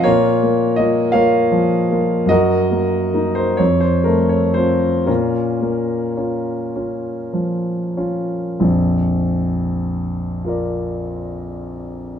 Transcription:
grand piano
0.04 A#2 F4 A#4 C#5
0.43 A#3
0.76 A#3 F4 D#5
1.12 A#3 F4 A#4 C#5 F5
1.52 F3
1.91 A#3 F4
2.26 F#2 D#5
2.30 F#4 A#4
2.71 A#3
3.14 A#3 D#4
3.35 C5
3.57 F2 C#5
3.80 C5
4.04 A3 A#4
4.29 C#5
4.54 C4 F4 C5
5.06 A#2 C#4 F4 A#4
5.61 A#3
6.17 C#4 F4
6.76 C#4 F4
7.33 F3
7.97 C#4 F4
8.60 A#1 F2
10.44 F4 A#4
10.48 D5

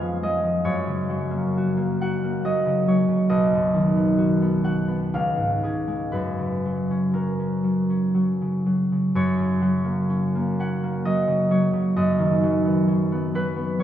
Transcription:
harp
Already playing: F2 G#3 B3 C#4 F5 G#5
0.02 F3
0.23 G#3 D#5
0.44 F3
0.65 F#2 C#5
0.87 C#3
1.09 F#3
1.31 A#3
1.57 F#4
1.77 A#3
2.01 F#4 F#5
2.24 A#3
2.45 F#3 D#5
2.66 C#3
2.88 F#3 C#5
3.08 C#3
3.30 B1 D#5
3.54 F#2
3.74 D#3
3.96 B3
4.18 F#4
4.42 B3
4.64 F#4 F#5
4.88 B3
5.14 C#2 F5
5.36 G#2
5.63 C#3 G#4
5.88 G#3
6.12 F#2 B4
6.39 C#3
6.66 F#3
6.91 C#4
7.14 F#3 A#4
7.40 C#4
7.64 F#3
7.90 C#4
8.14 F#3
8.42 C#3
8.66 F#3
8.92 C#3
9.15 F#2 C#5
9.38 C#3
9.62 F#3
9.84 A#3
10.10 C#4
10.35 A#3
10.60 C#4 F#5
10.83 A#3
11.05 F#3 D#5
11.28 C#3
11.51 F#3 C#5
11.73 C#3
11.96 F#2 D#5
12.19 D#3
12.43 F#3
12.65 B3
12.88 F#3
13.12 B3
13.35 F#3 B4
13.56 B3
13.79 F#3 C#5

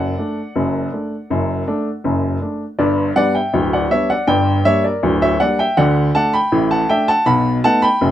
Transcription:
upright piano
Already playing: F#1 F#2 D5 F#5
0.18 A3 D4
0.56 F#1 F#2
0.93 A3 D4
1.30 F#1 F#2
1.67 A3 D4
2.04 F#1 F#2
2.42 A3 D4
2.79 G1 G2 B4 D5
3.16 G3 B3 D4 D5 F#5
3.35 E5 G5
3.53 D1 D2
3.73 D5 F#5
3.91 G3 B3 D4 C#5 E5
4.10 D5 F#5
4.27 G1 G2 D5 G5
4.65 G3 A#3 D4 C#5 E5
4.84 A#4 D5
5.03 D1 D2
5.22 C#5 E5
5.40 G3 A#3 D4 D5 F#5
5.59 E5 G5
5.77 D2 D3 D5 F#5
6.15 A3 D4 F#5 A5
6.33 G5 B5
6.52 A1 A2
6.71 F#5 A5
6.89 A3 D4 E5 G5
7.08 F#5 A5
7.26 B1 B2 F#5 B5
7.64 A3 B3 D#4 F#5 A5
7.82 G5 B5
8.01 F#1 F#2

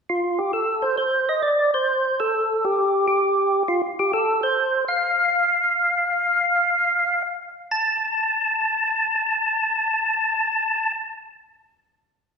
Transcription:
tonewheel organ
0.09 F4
0.38 G4
0.53 A4
0.82 C5
0.98 C5
1.29 D#5
1.42 D5
1.74 C5
2.20 A4
2.65 G4
3.08 G4
3.68 F4
3.99 G4
4.13 A4
4.43 C5
4.88 F5
7.71 A5

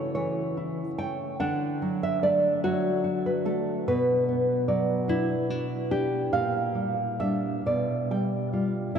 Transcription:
nylon-string guitar
Already playing: C#3 A3 E4 C#5
0.15 E3 C#5
0.57 E4
0.98 A3 G5
1.40 D3 D4 F#5
1.82 F#3
2.03 E5
2.23 A3 D5
2.64 F#3 F#4 C#5
3.04 F#4
3.26 B4
3.45 A3 A4
3.88 B2 B4
4.29 B3
4.68 F#3 D5
5.08 D4 E4
5.50 D4 F#4
5.91 D4 G4
6.33 A#2 F5
6.75 G3
7.19 G3 D4 E5
7.66 B2 D5
8.11 G3 G5
8.53 G3 F4
8.95 E4 E5

